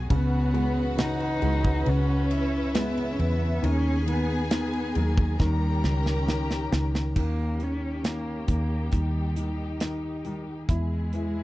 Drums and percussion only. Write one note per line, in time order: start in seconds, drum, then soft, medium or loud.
0.10 kick loud
0.10 ride medium
0.54 ride soft
0.98 snare loud
0.98 ride medium
1.20 ride soft
1.42 ride medium
1.65 kick loud
1.86 ride medium
2.31 ride medium
2.75 snare loud
2.75 ride medium
2.97 ride medium
3.19 ride medium
3.64 ride medium
4.08 ride medium
4.51 snare loud
4.51 ride medium
4.73 ride soft
4.95 ride medium
5.18 kick loud
5.40 kick medium
5.40 snare medium
5.84 snare medium
6.06 snare medium
6.28 snare medium
6.51 snare medium
6.72 snare loud
6.95 snare medium
7.16 kick medium
7.16 crash medium
7.60 closed hi-hat soft
8.04 snare medium
8.04 closed hi-hat medium
8.48 kick medium
8.48 closed hi-hat medium
8.92 kick medium
8.92 closed hi-hat medium
9.36 closed hi-hat medium
9.80 snare medium
9.80 closed hi-hat medium
10.25 closed hi-hat soft
10.69 kick medium
10.69 closed hi-hat medium
11.13 closed hi-hat soft